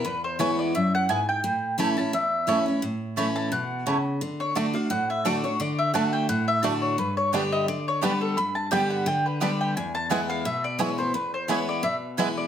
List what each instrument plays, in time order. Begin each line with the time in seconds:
0.05 steel-string acoustic guitar E2, mandolin B4
0.24 mandolin C5
0.39 steel-string acoustic guitar E3 G#3 B3 E4, mandolin B3 E4 B4 C#5 G#5
0.59 mandolin D5
0.75 steel-string acoustic guitar F#2, mandolin E5
0.95 mandolin F#5
1.09 steel-string acoustic guitar G#2, mandolin B3 E4 B4 G#5
1.29 mandolin G5
1.44 steel-string acoustic guitar A2
1.78 steel-string acoustic guitar E3 A3 C#4 E4, mandolin A3 E4 C#5 A5
1.97 steel-string acoustic guitar C#4 E4, mandolin A5
2.13 steel-string acoustic guitar E2, mandolin E5
2.47 steel-string acoustic guitar E3 A3 C#4 E4, mandolin A3 E4 C#5 A5
2.66 steel-string acoustic guitar C#4 E4
2.82 steel-string acoustic guitar A2
3.16 steel-string acoustic guitar E3 A3 C#4 E4, mandolin A3 E4 C#5 A5
3.36 mandolin A5
3.52 steel-string acoustic guitar B2, mandolin F#5
3.86 steel-string acoustic guitar C#3, mandolin A3 E4 C#5 A5
4.21 steel-string acoustic guitar D3
4.40 mandolin C#5
4.55 steel-string acoustic guitar D3 A3 D4 F#4, mandolin A3 F#4 D5 A5, five-string banjo A3 D4
4.73 steel-string acoustic guitar D4 F#4, mandolin F5
4.90 steel-string acoustic guitar A2, mandolin F#5
5.10 mandolin E5
5.25 steel-string acoustic guitar D3 A3 D4 F#4, mandolin A3 F#4 D5 A5, five-string banjo A3 D4
5.44 steel-string acoustic guitar D4 F#4, mandolin C#5
5.60 steel-string acoustic guitar D3, mandolin D5
5.79 mandolin E5
5.94 steel-string acoustic guitar D3 A3 D4 F#4, mandolin A3 F#4 D5 F#5 A5, five-string banjo A3 D4
6.13 mandolin G5
6.29 steel-string acoustic guitar A2, mandolin F#5
6.48 mandolin E5
6.63 steel-string acoustic guitar D3 A3 D4 F#4, mandolin A3 F#4 D5 A5, five-string banjo A3 D4
6.82 mandolin C#5
6.98 steel-string acoustic guitar G2, mandolin B4
7.17 mandolin C#5
7.32 steel-string acoustic guitar D3 G3 B3 G4, five-string banjo G3 B3 D4, mandolin B3 G4 D5 G5
7.52 mandolin D#5
7.68 steel-string acoustic guitar D3, mandolin D5
7.88 mandolin C#5
8.01 steel-string acoustic guitar D3 G3 B3 G4, five-string banjo G3 B3 D4, mandolin B3 G4 B4 D5 G5
8.21 mandolin A4
8.37 steel-string acoustic guitar G2, mandolin B5
8.55 mandolin A5
8.71 steel-string acoustic guitar D3 G3 B3 G4, five-string banjo G3 B3 D4, mandolin B3 G4 D5 G5
8.90 mandolin F#5
9.06 steel-string acoustic guitar D3, mandolin G5
9.26 mandolin B4
9.40 steel-string acoustic guitar D3 G3 B3 G4, five-string banjo G3 B3 D4, mandolin B3 G4 D5 G5
9.61 mandolin G5
9.77 steel-string acoustic guitar E2, mandolin G#5
9.95 mandolin A5
10.09 steel-string acoustic guitar E3 G#3 B3 E4, five-string banjo G#3 B3 E4, mandolin B3 E4 B4 F#5 G#5
10.30 mandolin F5
10.45 steel-string acoustic guitar B2, mandolin E5
10.64 mandolin D5
10.78 steel-string acoustic guitar E3 G#3 B3 E4, five-string banjo G#3 B3 E4, mandolin B3 E4 B4 C#5 G#5
10.98 steel-string acoustic guitar B3 E4, mandolin C5
11.14 steel-string acoustic guitar E2, mandolin B4
11.34 mandolin C5
11.48 steel-string acoustic guitar E3 G#3 B3 E4, five-string banjo G#3 B3 E4, mandolin B3 E4 B4 C#5 G#5
11.69 mandolin D5
11.83 steel-string acoustic guitar B2, mandolin E5
12.17 steel-string acoustic guitar E3 G#3 B3 E4, five-string banjo G#3 B3 E4, mandolin B3 E4 B4 G#5
12.37 mandolin D5